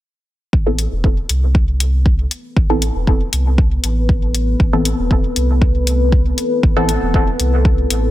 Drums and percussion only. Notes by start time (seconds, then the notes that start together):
0.53 kick
0.79 closed hi-hat
1.04 kick
1.29 closed hi-hat
1.55 kick
1.80 closed hi-hat
2.06 kick
2.31 closed hi-hat
2.57 kick
2.82 closed hi-hat
3.07 kick
3.33 closed hi-hat
3.58 kick
3.84 closed hi-hat
4.09 kick
4.35 closed hi-hat
4.60 kick
4.85 closed hi-hat
5.11 kick
5.36 closed hi-hat
5.62 kick
5.87 closed hi-hat
6.12 kick
6.38 closed hi-hat
6.63 kick
6.89 closed hi-hat
7.14 kick
7.40 closed hi-hat
7.65 kick
7.90 closed hi-hat